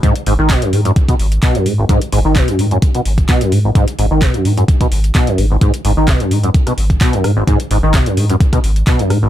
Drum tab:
HH |xxo-xxoxxxoxxxo-|xxo-xxoxxxoxxxo-|xxo-xxoxxxoxxxo-|xxo-xxoxxxoxxxo-|
CP |----x-------x---|----x-------x---|----x-------x---|----x-------x---|
SD |----------------|----------------|----------------|----r----r----r-|
BD |o---o---oo--o---|o---o---o--oo---|o---o---oo--o---|o---o---o--oo---|

HH |xxo-xxoxxxoxxxo-|
CP |----x-------x---|
SD |----r----r----r-|
BD |o---o---oo--o---|